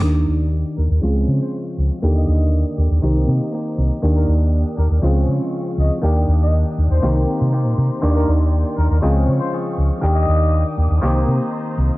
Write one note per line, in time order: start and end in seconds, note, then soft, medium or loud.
0.01 0.24 D#2 medium
0.01 0.97 D#3 medium
0.01 1.01 D#3 medium
0.01 0.98 A#3 medium
0.01 1.03 A#3 medium
0.01 0.98 D4 medium
0.01 1.03 D4 medium
0.01 1.01 G4 medium
0.01 0.98 G4 medium
0.01 1.04 G4 loud
0.01 1.01 D6 medium
0.15 0.31 A#4 medium
0.28 0.62 D#2 medium
0.77 0.88 D#2 medium
0.77 0.86 A#4 medium
0.90 1.01 D#2 medium
0.90 0.98 A#4 medium
1.02 1.24 C#2 medium
1.02 1.97 C#3 medium
1.02 2.02 F3 medium
1.02 1.98 G#3 medium
1.02 2.02 G#3 medium
1.02 2.02 C4 medium
1.02 1.98 C4 medium
1.02 2.03 C4 medium
1.02 1.98 F4 medium
1.02 2.04 G#4 medium
1.02 2.02 F5 medium
1.02 2.02 C#6 medium
1.28 1.38 C#3 medium
1.40 1.56 C5 medium
1.78 1.88 C#2 medium
2.02 2.24 D#2 medium
2.02 2.98 D3 medium
2.02 2.98 D#3 medium
2.02 3.02 A#3 medium
2.02 2.98 A#3 medium
2.02 2.78 D4 medium
2.02 2.98 G4 medium
2.02 2.77 G4 loud
2.02 3.02 G5 medium
2.02 3.02 D6 medium
2.02 4.01 D#6 medium
2.15 2.65 D#5 medium
2.28 2.62 D#2 medium
2.77 2.88 D#2 medium
2.77 3.03 D4 soft
2.77 3.03 G4 medium
2.91 3.01 D#2 medium
3.02 3.24 C2 medium
3.02 3.98 D#3 medium
3.02 3.98 A#3 medium
3.02 3.51 A#3 medium
3.02 3.98 C4 medium
3.02 3.52 D#4 medium
3.02 3.98 G4 medium
3.02 3.53 G4 loud
3.02 4.02 C5 medium
3.02 4.02 A#5 medium
3.28 3.38 C3 medium
3.52 4.01 A#3 medium
3.52 4.03 D#4 medium
3.52 4.03 G4 medium
3.78 3.89 C2 medium
4.02 4.24 D#2 medium
4.02 4.98 D#3 medium
4.02 4.78 A#3 medium
4.02 4.98 A#3 medium
4.02 5.02 D4 medium
4.02 4.98 D4 medium
4.02 4.78 D4 medium
4.02 4.98 G4 medium
4.02 4.76 G4 medium
4.02 5.02 G5 medium
4.02 5.02 D#6 medium
4.16 4.31 A#4 medium
4.28 4.62 D#2 medium
4.77 4.88 D#2 medium
4.77 5.04 D4 soft
4.77 5.03 G4 medium
4.77 4.86 A#4 medium
4.90 5.01 D#2 medium
4.90 4.98 A#4 medium
5.02 5.24 C#2 medium
5.02 5.97 C#3 medium
5.02 6.01 F3 medium
5.02 5.98 G#3 medium
5.02 6.03 G#3 medium
5.02 6.02 C4 medium
5.02 5.98 C4 medium
5.02 6.04 C4 loud
5.02 5.98 F4 medium
5.02 6.04 G#4 medium
5.02 6.02 F5 medium
5.02 6.02 C#6 medium
5.28 5.38 C#3 medium
5.78 5.88 C#2 medium
5.78 5.94 D#5 medium
6.02 6.24 D#2 medium
6.02 7.02 D#3 medium
6.02 6.98 D#3 medium
6.02 6.98 A#3 medium
6.02 7.03 A#3 medium
6.02 7.02 D4 medium
6.02 6.98 D4 medium
6.02 7.03 D4 medium
6.02 6.98 G4 medium
6.02 7.04 G4 medium
6.02 7.02 G5 medium
6.02 7.02 D#6 medium
6.28 6.62 D#2 medium
6.41 6.56 D#5 medium
6.78 6.88 D#2 medium
6.91 7.01 D#2 medium
6.91 7.08 C5 medium
7.02 7.24 C2 medium
7.02 7.97 D#3 medium
7.02 7.51 D#3 medium
7.02 7.98 A#3 medium
7.02 7.52 A#3 medium
7.02 7.98 C4 medium
7.02 7.52 C4 medium
7.02 7.98 G4 medium
7.02 7.53 G4 medium
7.02 8.02 C5 medium
7.02 8.02 A#5 medium
7.02 9.00 C6 medium
7.41 7.66 C3 medium
7.52 8.00 D#3 medium
7.52 8.02 A#3 medium
7.52 8.03 C4 medium
7.52 8.03 G4 medium
7.66 7.76 A#2 medium
7.78 7.88 C3 loud
8.02 8.24 D#2 medium
8.02 9.02 D#3 medium
8.02 8.97 D#3 medium
8.02 8.98 A#3 medium
8.02 9.02 A#3 medium
8.02 8.98 D4 medium
8.02 9.03 D4 medium
8.02 8.98 G4 medium
8.02 9.03 G4 loud
8.02 9.02 D5 medium
8.02 9.02 G5 medium
8.15 8.31 A#4 medium
8.28 8.62 D#2 medium
8.78 8.88 D#2 medium
8.78 8.86 A#4 medium
8.90 9.01 D#2 medium
8.90 8.98 A#4 medium
9.02 9.24 C#2 medium
9.02 9.97 C#3 medium
9.02 9.51 F3 medium
9.02 9.98 G#3 medium
9.02 9.52 G#3 medium
9.02 10.02 C4 medium
9.02 9.98 C4 medium
9.02 9.52 C4 medium
9.02 9.98 F4 medium
9.02 9.53 G#4 medium
9.02 10.02 F5 medium
9.02 10.02 C#6 medium
9.28 9.39 C#3 medium
9.40 9.55 C5 medium
9.52 10.01 F3 medium
9.52 10.03 G#3 medium
9.52 10.03 C4 medium
9.52 10.03 G#4 medium
9.78 9.88 C#2 loud
10.01 10.24 D#2 medium
10.01 10.97 D#3 medium
10.01 11.01 D#3 medium
10.01 10.97 A#3 medium
10.01 11.03 A#3 medium
10.01 11.03 D4 medium
10.01 10.98 G4 medium
10.01 11.05 G4 medium
10.01 11.02 G5 medium
10.01 11.02 D6 medium
10.01 11.98 D#6 medium
10.15 10.65 D#5 medium
10.28 10.62 D#2 medium
10.78 10.88 D#2 medium
10.90 11.01 D#2 medium
11.01 11.24 C2 medium
11.01 11.97 D#3 medium
11.01 11.98 D#3 medium
11.01 11.98 A#3 medium
11.01 11.98 C4 medium
11.01 11.98 G4 medium
11.01 11.98 G4 loud
11.01 11.98 C5 medium
11.01 11.98 A#5 medium
11.28 11.38 C3 medium
11.78 11.88 C2 loud